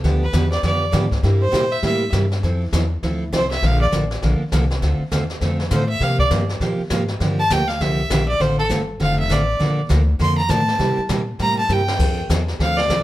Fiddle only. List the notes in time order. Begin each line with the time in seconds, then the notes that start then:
0.23 B4
0.52 D5
0.66 D5
1.42 C5
1.72 E5
1.86 E5
3.36 C5
3.51 E5
3.66 F5
3.81 D5
5.73 C5
5.89 E5
6.03 F5
6.20 D5
7.40 A5
7.52 G5
7.68 F5
7.81 E5
8.28 D5
8.41 C5
8.59 A4
9.02 F5
9.19 E5
9.32 D5
10.22 C6
10.38 A#5
10.51 A5
11.41 A#5
11.59 A5
11.72 G5
12.62 F5
12.77 D5